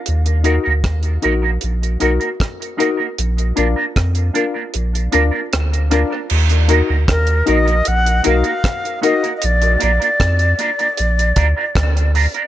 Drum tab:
CC |----------------|----------------|x---------------|----------------|
HH |xxx-xxx-xxxxxxx-|xxx-xxx-xxx-xxx-|-xx-xxxxxxxxxxxx|xxxxxxxxxxx-xxox|
SD |----r-------r---|----r-------r-r-|----r-------r---|----r-------r---|
BD |----o-------o---|----o-----------|----o-------o---|----o-----o-o---|